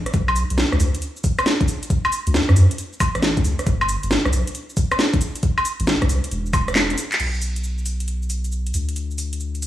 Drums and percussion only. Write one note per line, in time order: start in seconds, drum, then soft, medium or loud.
0.06 cross-stick soft
0.06 closed hi-hat medium
0.14 kick loud
0.14 closed hi-hat medium
0.14 cabasa soft
0.28 cabasa soft
0.28 high woodblock medium
0.36 open hi-hat loud
0.36 cabasa medium
0.50 closed hi-hat medium
0.50 cabasa soft
0.58 snare loud
0.58 cabasa soft
0.72 cross-stick medium
0.72 cabasa soft
0.80 open hi-hat loud
0.80 cabasa medium
0.95 closed hi-hat medium
0.95 cabasa soft
1.02 closed hi-hat medium
1.02 cabasa soft
1.17 cabasa soft
1.24 kick loud
1.24 open hi-hat loud
1.24 cabasa medium
1.39 cross-stick medium
1.39 closed hi-hat soft
1.39 cabasa soft
1.39 high woodblock medium
1.46 snare loud
1.46 cabasa soft
1.61 kick loud
1.61 closed hi-hat medium
1.61 cabasa soft
1.68 open hi-hat loud
1.68 cabasa medium
1.83 closed hi-hat medium
1.83 cabasa soft
1.90 kick loud
1.90 closed hi-hat medium
1.90 cabasa soft
2.05 cabasa soft
2.05 high woodblock medium
2.12 open hi-hat loud
2.12 cabasa medium
2.27 closed hi-hat medium
2.27 cabasa soft
2.34 snare loud
2.34 cabasa soft
2.49 cross-stick medium
2.49 cabasa soft
2.56 open hi-hat loud
2.56 cabasa medium
2.71 closed hi-hat medium
2.71 cabasa soft
2.78 closed hi-hat medium
2.78 cabasa soft
2.93 cabasa soft
3.00 kick loud
3.00 open hi-hat loud
3.00 cabasa medium
3.00 high woodblock medium
3.15 cross-stick medium
3.15 closed hi-hat soft
3.15 cabasa soft
3.22 snare loud
3.22 cabasa soft
3.37 kick loud
3.37 closed hi-hat medium
3.37 cabasa soft
3.45 open hi-hat loud
3.45 cabasa medium
3.59 cross-stick soft
3.59 closed hi-hat medium
3.59 cabasa soft
3.67 kick loud
3.67 closed hi-hat medium
3.67 cabasa soft
3.81 cabasa soft
3.81 high woodblock medium
3.89 open hi-hat loud
3.89 cabasa medium
4.03 closed hi-hat medium
4.03 cabasa soft
4.11 snare loud
4.11 cabasa soft
4.25 cross-stick medium
4.25 cabasa soft
4.33 open hi-hat loud
4.33 cabasa medium
4.47 closed hi-hat medium
4.47 cabasa soft
4.55 closed hi-hat medium
4.55 cabasa soft
4.70 cabasa soft
4.77 kick loud
4.77 open hi-hat loud
4.77 cabasa medium
4.92 cross-stick medium
4.92 closed hi-hat soft
4.92 cabasa soft
4.92 high woodblock medium
4.99 snare loud
4.99 cabasa soft
5.14 kick loud
5.14 closed hi-hat medium
5.14 cabasa soft
5.21 open hi-hat loud
5.21 cabasa medium
5.36 closed hi-hat medium
5.36 cabasa soft
5.43 kick loud
5.43 closed hi-hat medium
5.43 cabasa soft
5.58 cabasa soft
5.58 high woodblock medium
5.65 open hi-hat loud
5.65 cabasa medium
5.80 closed hi-hat medium
5.80 cabasa soft
5.87 snare loud
5.87 cabasa soft
6.02 kick medium
6.02 cross-stick medium
6.02 closed hi-hat soft
6.02 cabasa soft
6.09 open hi-hat loud
6.09 cabasa medium
6.24 closed hi-hat medium
6.24 cabasa soft
6.31 closed hi-hat medium
6.31 cabasa soft
6.46 cabasa soft
6.53 kick loud
6.53 open hi-hat loud
6.53 cabasa medium
6.53 high woodblock medium
6.68 cross-stick medium
6.68 closed hi-hat soft
6.68 cabasa soft
6.76 snare loud
6.76 clap loud
6.76 cabasa soft
6.90 closed hi-hat medium
6.90 cabasa soft
6.98 open hi-hat loud
6.98 cabasa medium
7.12 clap medium
7.12 closed hi-hat medium
7.12 cabasa soft
7.20 closed hi-hat medium
7.20 crash medium
7.20 cabasa soft
7.34 cabasa soft
7.42 open hi-hat loud
7.42 cabasa medium
7.56 closed hi-hat medium
7.56 cabasa soft
7.64 cabasa soft
7.78 cabasa soft
7.86 open hi-hat medium
7.86 cabasa medium
8.00 closed hi-hat medium
8.00 cabasa soft
8.08 closed hi-hat medium
8.08 cabasa soft
8.22 cabasa soft
8.30 open hi-hat loud
8.30 cabasa medium
8.44 closed hi-hat soft
8.44 cabasa soft
8.52 cabasa soft
8.67 closed hi-hat soft
8.67 cabasa soft
8.74 open hi-hat medium
8.74 cabasa medium
8.89 closed hi-hat medium
8.89 cabasa soft
8.96 closed hi-hat medium
8.96 cabasa soft
9.11 cabasa soft
9.18 open hi-hat loud
9.18 cabasa medium
9.33 closed hi-hat medium
9.33 cabasa soft
9.40 cabasa soft
9.55 closed hi-hat soft
9.55 cabasa soft
9.62 open hi-hat medium
9.62 cabasa medium